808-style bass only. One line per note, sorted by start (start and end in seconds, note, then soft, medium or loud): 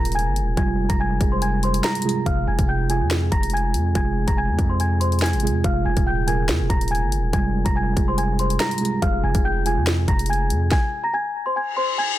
0.00 0.28 D#1 loud
0.26 0.43 G1 loud
0.42 0.57 D#1 loud
0.57 0.88 F1 loud
0.90 1.19 F1 loud
1.21 1.81 F1 loud
2.26 2.47 F1 loud
2.47 2.58 F1 loud
2.59 3.02 F1 loud
3.01 3.30 F2 loud
3.32 3.76 F1 loud
3.74 3.94 F2 loud
3.95 4.26 F1 loud
4.28 4.50 F1 loud
4.49 4.58 F2 loud
4.59 5.35 F2 loud
5.33 5.50 G#1 loud
5.49 5.64 F2 loud
5.64 5.85 F1 loud
5.85 5.96 F1 loud
5.97 6.50 D#1 loud
6.49 6.62 F2 loud
6.60 6.69 D#1 loud
6.70 7.04 D#1 loud
7.02 7.19 G1 loud
7.18 7.33 D#1 loud
7.33 7.64 F1 loud
7.66 7.96 F1 loud
7.97 8.58 F1 loud
9.02 9.23 F1 loud
9.24 9.34 F1 loud
9.35 9.78 F1 loud
9.77 10.06 F2 loud
10.08 10.52 F1 loud
10.50 10.70 F2 loud